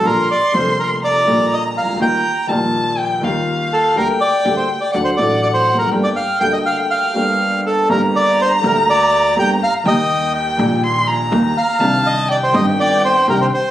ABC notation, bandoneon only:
X:1
M:4/4
L:1/16
Q:1/4=123
K:Gm
V:1 name="Bandoneon"
B2 d2 c2 B2 d4 e2 f2 | g4 z8 z2 A2 | B2 d3 c2 d d c d2 d c2 B- | B d f2 g e f2 f6 A2 |
B2 d2 c2 B2 d4 g2 f2 | e4 z8 z2 f2- | f2 e2 d c e2 d2 c2 B c c2 |]